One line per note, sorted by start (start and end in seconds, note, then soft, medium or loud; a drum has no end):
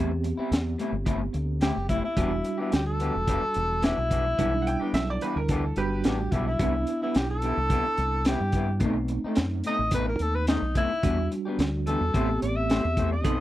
0.00 0.32 E2 medium
0.00 0.10 G3 medium
0.00 2.12 B3 medium
0.00 0.10 C4 medium
0.00 2.12 C4 medium
0.00 2.13 G4 medium
0.10 muted clean electric guitar stroke medium
0.24 muted clean electric guitar stroke soft
0.24 closed hi-hat medium
0.38 0.50 G3 soft
0.38 0.51 C4 medium
0.38 0.50 E4 medium
0.38 muted fingered electric bass stroke soft
0.51 0.75 E2 medium
0.51 muted clean electric guitar stroke soft
0.51 snare loud
0.51 closed hi-hat medium
0.79 0.93 A2 medium
0.79 0.93 G3 medium
0.79 0.93 C4 medium
0.79 0.92 E4 medium
0.79 closed hi-hat medium
0.92 1.28 G1 medium
0.92 muted clean electric guitar stroke medium
1.06 1.20 A2 medium
1.06 1.20 G3 medium
1.06 1.20 C4 loud
1.06 1.19 E4 loud
1.06 kick medium
1.06 closed hi-hat medium
1.20 muted clean electric guitar stroke soft
1.33 1.70 D2 medium
1.33 muted clean electric guitar stroke soft
1.33 closed hi-hat medium
1.61 1.75 A2 medium
1.61 1.76 G3 medium
1.61 1.75 C4 medium
1.61 1.74 E4 medium
1.61 1.88 G4 medium
1.61 snare loud
1.61 closed hi-hat medium
1.75 2.00 F#1 medium
1.75 muted clean electric guitar stroke soft
1.89 2.03 A2 medium
1.89 2.03 G3 medium
1.89 2.03 C4 medium
1.89 2.02 E4 medium
1.89 kick medium
1.89 closed hi-hat medium
2.03 2.58 E4 medium
2.03 muted clean electric guitar stroke soft
2.17 2.41 E1 medium
2.17 2.31 E3 medium
2.17 4.34 G3 medium
2.17 2.31 B3 medium
2.17 4.34 D4 medium
2.17 2.31 D4 medium
2.17 4.35 F#4 medium
2.17 2.30 G4 medium
2.17 kick medium
2.17 closed hi-hat medium
2.32 muted clean electric guitar stroke soft
2.44 muted clean electric guitar stroke soft
2.44 closed hi-hat medium
2.58 2.71 B3 soft
2.58 2.71 D4 soft
2.58 2.72 E4 medium
2.58 2.71 G4 medium
2.72 3.09 D2 medium
2.72 2.86 G4 medium
2.72 muted clean electric guitar stroke soft
2.72 snare loud
2.72 closed hi-hat medium
2.86 3.86 A4 medium
3.00 3.14 E3 medium
3.00 3.15 B3 medium
3.00 3.14 D4 medium
3.00 3.13 G4 medium
3.00 closed hi-hat medium
3.14 3.39 E1 medium
3.14 muted clean electric guitar stroke soft
3.27 3.42 E3 medium
3.27 3.42 B3 medium
3.27 3.41 D4 medium
3.27 3.40 G4 medium
3.27 kick medium
3.27 closed hi-hat medium
3.42 muted clean electric guitar stroke soft
3.54 3.92 E1 medium
3.54 muted clean electric guitar stroke soft
3.54 closed hi-hat medium
3.82 3.97 E3 medium
3.82 3.97 B3 medium
3.82 3.97 D4 medium
3.82 4.91 E4 loud
3.82 3.96 G4 medium
3.82 snare loud
3.82 closed hi-hat medium
3.97 4.33 B1 medium
3.97 muted clean electric guitar stroke soft
4.10 4.25 E3 medium
4.10 4.25 B3 medium
4.10 4.25 D4 medium
4.10 4.23 G4 medium
4.10 kick medium
4.10 closed hi-hat medium
4.25 muted clean electric guitar stroke soft
4.38 4.75 B1 loud
4.38 4.52 E3 medium
4.38 5.74 G3 medium
4.38 4.52 B3 medium
4.38 5.74 D4 medium
4.38 4.51 D4 medium
4.38 5.75 E4 medium
4.38 4.51 G4 medium
4.38 kick medium
4.38 closed hi-hat medium
4.52 muted clean electric guitar stroke soft
4.62 4.66 F#5 medium
4.66 4.93 G5 medium
4.66 muted clean electric guitar stroke soft
4.66 closed hi-hat medium
4.80 4.93 B3 soft
4.80 4.94 D4 medium
4.80 4.93 G4 medium
4.93 5.17 B1 medium
4.93 5.07 E5 medium
4.93 muted clean electric guitar stroke soft
4.93 snare loud
4.93 closed hi-hat medium
5.10 5.22 D5 medium
5.21 5.36 E3 medium
5.21 5.36 B3 medium
5.21 5.37 D4 medium
5.21 5.36 G4 medium
5.21 5.35 B4 medium
5.21 closed hi-hat medium
5.36 5.71 D2 medium
5.36 5.49 A#4 medium
5.36 muted clean electric guitar stroke soft
5.48 5.64 E3 medium
5.48 5.64 B3 medium
5.48 5.63 D4 medium
5.48 5.63 G4 loud
5.48 5.77 A4 medium
5.48 kick medium
5.48 closed hi-hat medium
5.64 muted clean electric guitar stroke soft
5.76 6.02 G1 medium
5.76 6.60 G3 medium
5.76 6.59 D4 medium
5.76 6.60 F#4 medium
5.76 6.03 G4 medium
5.76 6.04 B4 medium
5.76 muted clean electric guitar stroke soft
5.76 closed hi-hat medium
6.04 6.29 A1 medium
6.04 6.19 E3 medium
6.04 6.19 B3 medium
6.04 6.19 D4 medium
6.04 6.33 G4 medium
6.04 6.18 G4 medium
6.04 snare loud
6.04 closed hi-hat medium
6.19 muted clean electric guitar stroke soft
6.32 6.57 B1 medium
6.32 6.46 E3 medium
6.32 6.47 B3 medium
6.32 6.46 D4 medium
6.32 6.45 E4 medium
6.32 6.45 G4 medium
6.32 kick medium
6.32 closed hi-hat medium
6.47 7.01 E4 medium
6.47 muted clean electric guitar stroke soft
6.59 6.84 C2 loud
6.59 6.74 C3 medium
6.59 6.74 G3 medium
6.59 8.77 B3 medium
6.59 6.74 B3 medium
6.59 8.77 D4 medium
6.59 8.78 E4 medium
6.59 6.73 E4 medium
6.59 kick loud
6.59 closed hi-hat medium
6.74 muted clean electric guitar stroke soft
6.87 muted clean electric guitar stroke soft
6.87 closed hi-hat medium
7.02 7.15 G3 soft
7.02 7.16 B3 soft
7.02 7.15 E4 soft
7.02 7.18 E4 medium
7.15 7.52 B1 medium
7.15 7.29 G4 medium
7.15 muted clean electric guitar stroke soft
7.15 snare loud
7.15 closed hi-hat medium
7.30 8.24 A4 loud
7.42 7.57 C3 medium
7.42 7.58 G3 medium
7.42 7.57 B3 medium
7.42 7.56 E4 medium
7.42 closed hi-hat medium
7.57 7.81 C2 medium
7.57 muted clean electric guitar stroke soft
7.70 7.85 C3 medium
7.70 7.85 G3 medium
7.70 7.84 B3 medium
7.70 7.84 E4 medium
7.70 kick medium
7.70 closed hi-hat medium
7.85 muted clean electric guitar stroke soft
7.97 8.35 C2 medium
7.97 muted clean electric guitar stroke soft
7.97 closed hi-hat medium
8.25 8.41 C3 medium
8.25 8.41 G3 medium
8.25 8.40 B3 medium
8.25 8.40 E4 medium
8.25 8.80 G4 medium
8.25 snare loud
8.25 closed hi-hat medium
8.40 8.82 G2 loud
8.40 muted clean electric guitar stroke soft
8.52 8.68 C3 medium
8.52 8.68 G3 medium
8.52 8.67 B3 medium
8.52 kick medium
8.52 closed hi-hat medium
8.56 8.67 E4 medium
8.68 muted clean electric guitar stroke soft
8.80 9.17 B1 loud
8.80 8.96 B2 medium
8.80 10.98 A3 medium
8.80 8.96 A3 medium
8.80 10.98 C4 medium
8.80 8.96 C4 medium
8.80 10.99 D#4 medium
8.80 8.95 D#4 medium
8.80 kick medium
8.80 closed hi-hat medium
8.96 muted clean electric guitar stroke soft
9.08 muted clean electric guitar stroke soft
9.08 closed hi-hat medium
9.24 9.37 A3 soft
9.24 9.37 C4 medium
9.24 9.37 D#4 soft
9.24 muted fingered electric bass stroke soft
9.35 9.61 F#2 medium
9.35 muted clean electric guitar stroke soft
9.35 snare loud
9.35 closed hi-hat medium
9.64 9.79 B2 medium
9.64 9.79 A3 medium
9.64 9.79 C4 medium
9.64 9.78 D#4 medium
9.64 9.93 D#5 medium
9.64 closed hi-hat medium
9.79 10.14 A1 medium
9.79 muted clean electric guitar stroke soft
9.91 10.07 B2 medium
9.91 10.07 A3 medium
9.91 10.07 C4 medium
9.91 10.06 D#4 medium
9.91 10.07 B4 medium
9.91 kick medium
9.91 closed hi-hat medium
10.07 10.23 A#4 medium
10.07 muted clean electric guitar stroke soft
10.19 10.56 D#2 medium
10.19 10.36 A4 medium
10.19 muted clean electric guitar stroke soft
10.19 closed hi-hat medium
10.35 10.47 B4 medium
10.47 10.62 B2 medium
10.47 10.62 A3 medium
10.47 10.62 C4 medium
10.47 10.75 D#4 medium
10.47 10.61 D#4 medium
10.47 snare loud
10.47 closed hi-hat medium
10.62 10.86 B1 medium
10.62 muted clean electric guitar stroke soft
10.75 10.90 B2 medium
10.75 10.90 A3 medium
10.75 10.90 C4 medium
10.75 10.89 D#4 medium
10.75 11.30 E4 loud
10.75 kick medium
10.75 closed hi-hat medium
10.91 muted clean electric guitar stroke soft
11.03 11.27 E2 medium
11.03 11.18 E3 medium
11.03 12.12 G3 medium
11.03 11.18 B3 medium
11.03 12.12 D4 medium
11.03 11.17 D4 medium
11.03 12.12 F#4 medium
11.03 11.17 G4 medium
11.03 kick loud
11.03 closed hi-hat medium
11.18 muted clean electric guitar stroke soft
11.31 muted clean electric guitar stroke soft
11.31 closed hi-hat medium
11.45 11.58 B3 soft
11.45 11.58 D4 medium
11.45 11.58 G4 medium
11.59 11.95 D2 medium
11.59 muted clean electric guitar stroke soft
11.59 snare loud
11.59 closed hi-hat medium
11.86 12.01 E3 medium
11.86 12.01 B3 medium
11.86 12.01 D4 medium
11.86 12.00 G4 medium
11.86 12.40 A4 medium
11.86 closed hi-hat medium
12.01 12.12 E2 medium
12.01 muted clean electric guitar stroke soft
12.14 12.38 A1 medium
12.14 12.28 A3 medium
12.14 13.22 B3 medium
12.14 13.22 C4 medium
12.14 12.28 E4 medium
12.14 13.23 G4 medium
12.14 12.28 G4 medium
12.14 12.28 C5 medium
12.14 kick medium
12.14 closed hi-hat medium
12.29 muted clean electric guitar stroke soft
12.41 12.78 A1 medium
12.41 12.57 D5 medium
12.41 muted clean electric guitar stroke soft
12.41 closed hi-hat medium
12.56 13.10 E5 medium
12.69 12.84 A3 medium
12.69 12.84 E4 medium
12.69 12.84 G4 medium
12.69 12.83 C5 medium
12.69 snare loud
12.69 closed hi-hat medium
12.84 13.25 E2 medium
12.84 muted clean electric guitar stroke soft
12.97 13.11 A3 medium
12.97 13.12 E4 medium
12.97 13.12 G4 medium
12.97 13.11 C5 medium
12.97 kick medium
12.97 closed hi-hat medium
13.12 13.40 D#5 medium
13.12 muted clean electric guitar stroke soft
13.24 13.40 B1 loud
13.24 13.39 B3 medium
13.24 13.40 C4 medium
13.24 13.40 D#4 medium
13.24 13.39 D#4 medium
13.24 13.40 A4 medium
13.24 13.39 A4 medium
13.24 13.38 C5 medium
13.24 kick loud
13.24 closed hi-hat medium